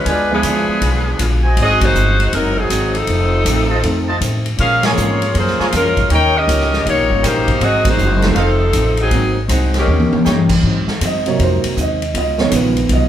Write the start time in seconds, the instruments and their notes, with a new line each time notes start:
0.05 upright bass D2, hollow-body jazz guitar D3 G#3 B3 F4, saxophone section G#3 D4 F4 B4, trumpet section B4 D5 G#5, kick, ride
0.30 upright piano F3 G#3 B3 E4, saxophone section F3 B3 D4 G#4
0.43 upright bass C#2, hollow-body jazz guitar D3 G#3 B3 F4, kick, hi-hat pedal, ride
0.68 muted upright bass stroke
0.81 upright bass B1, hollow-body jazz guitar D3 G#3 B3 F4, kick, ride
1.19 upright bass A#1, hollow-body jazz guitar D3 G#3 B3 F4, kick, hi-hat pedal, ride
1.44 trumpet section F#4 C5 D#5 G#5
1.57 upright bass G#1, hollow-body jazz guitar G#2 F#3 C4 D#4, kick, ride
1.61 saxophone section C4 F#4 G#4 D#5
1.81 upright piano F#3 A#3 C4 D#4, saxophone section G#3 D#4 F#4 C5, kick, ride
1.95 upright bass G1, hollow-body jazz guitar G#2 F#3 C4 D#4, hi-hat pedal
2.20 ride
2.32 upright bass F#1, hollow-body jazz guitar G#2 F#3 C4 D#4, saxophone section C4 D#4 A4 A#4, kick, ride
2.36 saxophone section F#3
2.58 saxophone section F#3 C4 D#4 G#4
2.70 upright bass G#1, hollow-body jazz guitar G#2 F#3 C4 D#4, kick, hi-hat pedal, ride
2.95 saxophone section F3 C4 D#4 A4, ride
3.07 upright bass F1, hollow-body jazz guitar F2 D#3 A3 C4, kick, ride
3.45 upright bass A1, hollow-body jazz guitar F2 D#3 A3 C4, upright piano F3 A3 C4 D#4, kick, hi-hat pedal, ride
3.70 trumpet section F4 C5 D#5 A5
3.83 upright bass F2, hollow-body jazz guitar F2 D#3 A3 C4, upright piano F3 A3 C4 D#4, kick, ride
4.08 trumpet section F4 C5 D#5 A5
4.20 hollow-body jazz guitar F2 D#3 A3 C4, upright bass A2, kick, hi-hat pedal, ride
4.46 ride
4.57 hollow-body jazz guitar A#2 F3 G#3 C#4, upright bass A#2, saxophone section C#4 G#4 A#4 F5, kick, ride
4.83 saxophone section A#3 F4 G#4 C#5, trumpet section F4 A#4 C#5 G#5, snare, ride
4.97 upright bass G#2, hollow-body jazz guitar A#2 F3 G#3 C#4, upright piano G#3 C4 C#4 F4, hi-hat pedal
5.22 ride
5.35 upright bass F#2, hollow-body jazz guitar A#2 F3 G#3 C#4, saxophone section G#4, kick, ride
5.39 saxophone section A#3 F4 C5
5.47 snare
5.59 trumpet section F4 A#4 C#5 G#5, muted upright bass stroke, snare
5.72 upright bass F2, hollow-body jazz guitar A#2 F3 G#3 C#4, upright piano G#3 C#4 F4 C5, saxophone section G#3 F4 A#4, kick, snare, hi-hat pedal, ride
5.77 saxophone section C#4
5.97 kick, ride
6.10 upright bass D#2, hollow-body jazz guitar D#3 A#3 C#4 G4, trumpet section D#4 A#4 C#5 G5, saxophone section A#4 C#5, kick, ride
6.14 saxophone section D#4 G5
6.37 saxophone section C#4 G4 A#4 D#5
6.47 upright bass C#2, hollow-body jazz guitar D#3 A#3 C#4 G4, kick, hi-hat pedal, ride
6.61 snare
6.73 snare
6.86 upright bass C2, hollow-body jazz guitar D#3 A#3 C#4 G4, saxophone section A#3 D#4 G4 C#5, kick, ride
6.97 upright bass A#1
7.09 upright bass G1, upright piano G3 A#3 C#4 F4
7.22 upright bass A#1, hollow-body jazz guitar D#3 A#3 C#4 G4, saxophone section A#3 D#4 G4 C5, trumpet section C#4 D#4 A#4 G5, kick, snare, hi-hat pedal, ride
7.48 kick, ride
7.60 upright bass G#1, hollow-body jazz guitar G#2 F#3 C4 D#4, trumpet section D#4 G#4 C5 F#5, saxophone section F#4 G#4 D#5, kick, ride
7.64 saxophone section C4
7.85 upright piano F#3 A#3 C4 D#4, kick, ride
7.89 saxophone section G#3 D#4 F#4 C5
7.97 upright bass F#1, hollow-body jazz guitar G#2 F#3 C4 D#4, hi-hat pedal
8.22 upright piano F3 A3 C4 D#4, snare, ride
8.35 upright bass F1, hollow-body jazz guitar F2 D#3 A3 C4, saxophone section F3 C4 A4, trumpet section D#4 A4 C5 F5, kick, ride
8.39 saxophone section D#4
8.73 upright bass A1, hollow-body jazz guitar F2 D#3 A3 C4, kick, hi-hat pedal, ride
8.97 saxophone section F#3 C4 D#4 G#4, ride
9.10 upright bass G#1, hollow-body jazz guitar G#2 F#3 C4 D#4, upright piano F#3 A#3 C4 D#4, kick, ride
9.48 upright bass C2, hollow-body jazz guitar G#2 F#3 C4 D#4, trumpet section D#4 G#4 C5 F#5, kick, hi-hat pedal, ride
9.74 snare, ride
9.78 saxophone section D#3 A#3 C#4 G4
9.87 upright bass D#2, hollow-body jazz guitar D#3 A#3 C#4 G4, high tom
10.00 high tom
10.12 muted upright bass stroke, high tom
10.25 upright bass G2, hollow-body jazz guitar D#3 A#3 C#4 G4, upright piano G3 A#3 C#4 G4, trumpet section D#4 A#4 C#5 G5, snare, hi-hat pedal
10.49 kick, crash
10.63 upright bass G#2, hollow-body jazz guitar G#2 F#3 C4 D#4, kick
10.87 muted upright bass stroke, snare
11.01 upright bass F#2, hollow-body jazz guitar G#2 F#3 C4 D#4, kick, hi-hat pedal, ride
11.05 upright piano D#5
11.26 upright piano C3 F#3 A#3 C#5, ride
11.38 upright bass F2, hollow-body jazz guitar G#2 F#3 C4 D#4, kick, ride
11.43 upright piano C5
11.64 muted upright bass stroke, ride
11.77 upright bass D#2, hollow-body jazz guitar G#2 F#3 C4 D#4, kick, hi-hat pedal
11.81 upright piano D#5
12.02 ride
12.14 upright bass C#2, hollow-body jazz guitar C#3 G#3 B3 F4, upright piano D#5, kick, ride
12.38 upright piano D#3 F3 B3 C#5, snare
12.51 upright bass A#1, hollow-body jazz guitar C#3 G#3 B3 F4, kick, hi-hat pedal, ride
12.56 upright piano B4
12.77 ride
12.89 upright bass B1, hollow-body jazz guitar C#3 G#3 B3 F4, kick, ride
12.93 upright piano D#5